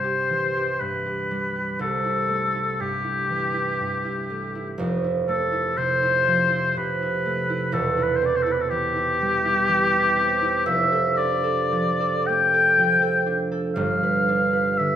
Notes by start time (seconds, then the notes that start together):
Already playing: C2 G2 G3 C5
0.04 G4
0.30 E3
0.57 G4
0.80 G2 B4
1.06 G4
1.31 G3
1.55 G4
1.79 C2 A4
2.04 E4
2.28 A3
2.55 E4
2.80 G2 G4
3.04 E4
3.29 E3
3.54 E4
3.80 G2
4.05 E4
4.30 A3
4.55 E4
4.78 F1 F2
5.04 E4
5.28 A3 A4
5.53 E4
5.77 C3 C5
6.03 E4
6.28 F3
6.52 E4
6.77 C3 B4
7.02 E4
7.25 A3
7.50 E4
7.72 E1 E2 A4
7.98 E4
8.02 B4
8.16 C5
8.21 C4 D5
8.35 C5
8.42 A4
8.46 E4
8.51 B4
8.61 A4
8.70 E3 G4
8.96 E4
9.21 G3
9.45 E4
9.68 E3
9.92 E4
10.17 C4
10.42 E4
10.66 F1 F2 E5
10.92 A4
11.17 D4 D5
11.44 A4
11.72 F3
12.00 A4
12.27 A3 G5
12.54 A4
12.78 F3
13.02 A4
13.26 D4
13.52 A4
13.75 G1 G2 F5
14.03 B4
14.29 D4
14.53 B4
14.78 D3 E5